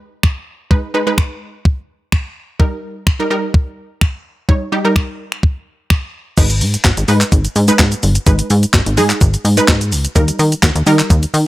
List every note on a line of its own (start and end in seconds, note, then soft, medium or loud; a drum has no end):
0.00 0.11 G#3 medium
0.00 0.11 D#4 medium
0.00 0.11 B4 medium
0.23 finger snap loud
0.23 kick loud
0.71 0.86 G#3 medium
0.71 0.86 D#4 medium
0.71 0.86 B4 medium
0.71 kick loud
0.94 1.02 G#3 medium
0.94 1.02 D#4 medium
0.94 1.02 B4 medium
1.07 1.64 G#3 medium
1.07 1.64 D#4 medium
1.07 1.64 B4 medium
1.18 finger snap loud
1.18 kick loud
1.65 kick loud
2.12 finger snap loud
2.12 kick loud
2.59 2.96 G3 medium
2.59 2.96 D#4 medium
2.59 2.96 A#4 medium
2.59 kick loud
3.07 finger snap loud
3.07 kick loud
3.19 3.26 G3 medium
3.19 3.26 D#4 medium
3.19 3.27 A#4 medium
3.30 3.89 G3 medium
3.30 3.89 D#4 medium
3.30 3.89 A#4 medium
3.54 kick loud
4.01 finger snap loud
4.01 kick loud
4.49 4.64 G3 medium
4.49 4.64 D#4 medium
4.49 4.64 C#5 medium
4.49 kick loud
4.72 4.80 G3 medium
4.72 4.80 D#4 medium
4.72 4.80 G4 medium
4.85 5.42 G3 medium
4.85 5.42 D#4 medium
4.85 5.42 A#4 medium
4.96 finger snap loud
4.96 kick loud
5.32 finger snap medium
5.43 kick loud
5.90 finger snap loud
5.90 kick loud
6.37 6.63 G#1 loud
6.37 6.81 G#3 medium
6.37 6.81 D#4 medium
6.37 6.81 B4 medium
6.37 kick loud
6.37 closed hi-hat medium
6.37 crash loud
6.37 shaker medium
6.50 closed hi-hat medium
6.50 shaker medium
6.61 6.77 G#2 loud
6.61 open hi-hat medium
6.61 shaker medium
6.74 closed hi-hat medium
6.74 shaker medium
6.85 6.93 G#1 loud
6.85 kick loud
6.85 snare medium
6.85 clap loud
6.85 closed hi-hat medium
6.85 shaker medium
6.97 7.05 G#1 loud
6.97 closed hi-hat medium
6.97 shaker medium
7.08 7.24 G#2 loud
7.08 7.45 G#3 medium
7.08 7.45 D#4 medium
7.08 7.45 B4 loud
7.08 open hi-hat medium
7.08 shaker medium
7.21 clap medium
7.21 closed hi-hat medium
7.21 shaker medium
7.32 7.48 G#1 loud
7.32 kick loud
7.32 closed hi-hat medium
7.32 shaker medium
7.45 closed hi-hat soft
7.45 shaker soft
7.56 7.71 G#2 loud
7.56 open hi-hat medium
7.56 shaker medium
7.68 8.04 G#3 medium
7.68 8.04 D#4 medium
7.68 8.04 B4 loud
7.68 closed hi-hat medium
7.68 shaker medium
7.79 7.95 G#2 loud
7.79 kick loud
7.79 snare medium
7.79 clap loud
7.79 closed hi-hat medium
7.79 shaker medium
7.92 closed hi-hat medium
7.92 shaker medium
8.03 8.18 G1 medium
8.03 open hi-hat medium
8.03 shaker medium
8.15 closed hi-hat medium
8.15 shaker medium
8.26 8.42 G#1 loud
8.26 8.70 G#3 medium
8.26 8.70 D#4 medium
8.26 8.70 B4 medium
8.26 kick loud
8.26 closed hi-hat medium
8.26 shaker medium
8.39 closed hi-hat medium
8.39 shaker medium
8.50 8.66 G#2 loud
8.50 open hi-hat medium
8.50 shaker medium
8.63 closed hi-hat medium
8.63 shaker medium
8.74 8.82 G#1 loud
8.74 kick loud
8.74 snare medium
8.74 clap loud
8.74 closed hi-hat medium
8.74 shaker medium
8.86 8.99 G#1 medium
8.86 closed hi-hat medium
8.86 shaker medium
8.97 9.13 G#2 loud
8.97 9.34 G#3 medium
8.97 9.34 D#4 medium
8.97 9.34 G#4 loud
8.97 open hi-hat medium
8.97 shaker medium
9.10 clap medium
9.10 closed hi-hat medium
9.10 shaker medium
9.21 9.37 G#1 loud
9.21 kick loud
9.21 closed hi-hat medium
9.21 shaker medium
9.34 closed hi-hat soft
9.34 shaker soft
9.45 9.60 G#2 loud
9.45 open hi-hat medium
9.45 shaker medium
9.57 9.93 G#3 medium
9.57 9.93 D#4 medium
9.57 9.93 B4 loud
9.57 closed hi-hat medium
9.57 shaker medium
9.68 9.94 G#2 loud
9.68 kick loud
9.68 snare medium
9.68 clap loud
9.68 closed hi-hat medium
9.68 shaker medium
9.81 closed hi-hat medium
9.81 shaker medium
9.92 10.07 C#2 medium
9.92 open hi-hat medium
9.92 shaker medium
10.05 closed hi-hat medium
10.05 shaker medium
10.15 10.31 D#2 loud
10.15 10.59 G3 medium
10.15 10.59 D#4 medium
10.15 10.59 A#4 medium
10.15 kick loud
10.15 closed hi-hat medium
10.15 shaker medium
10.28 closed hi-hat medium
10.28 shaker medium
10.39 10.55 D#3 loud
10.39 open hi-hat medium
10.39 shaker medium
10.52 closed hi-hat medium
10.52 shaker medium
10.63 10.71 D#2 loud
10.63 kick loud
10.63 snare medium
10.63 clap loud
10.63 closed hi-hat medium
10.63 shaker medium
10.75 10.83 D#2 loud
10.75 closed hi-hat medium
10.75 shaker medium
10.87 11.02 D#3 loud
10.87 11.23 G3 medium
10.87 11.23 D#4 medium
10.87 11.23 A#4 loud
10.87 open hi-hat medium
10.87 shaker medium
10.99 clap medium
10.99 closed hi-hat medium
10.99 shaker medium
11.10 11.26 D#2 loud
11.10 kick loud
11.10 closed hi-hat medium
11.10 shaker medium
11.23 closed hi-hat soft
11.23 shaker soft
11.34 11.47 D#3 loud
11.34 open hi-hat medium
11.34 shaker medium